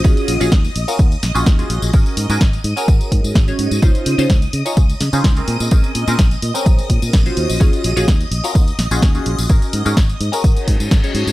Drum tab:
HH |xxoxxxoxxxoxxxox|xxoxxxoxxxoxxxox|xxoxxxoxxxoxxxox|xxoxxxoxxxoxxxox|
TB |xx-xxx-xxx-xxx-x|xx-x-x-xxx-xxx-x|xx-xxx-xxx-xxx-x|xx-xxx-xxx-xxx-x|
SD |----o-----o-o---|----o-------o---|----o-----o-o---|----o-------o---|
BD |o---o---o---o---|o---o---o-o-o---|o---o---o---o---|o---o---o-o-o---|

HH |xxoxxxoxxxoxxxox|xxoxxxoxxxoxxxox|
TB |xx-xxx-xxx-xxx-x|xx-xxx-x-x-xxx-x|
SD |----o-----o-o---|----o-------o---|
BD |o---o---o---o---|o---o---o-o-o---|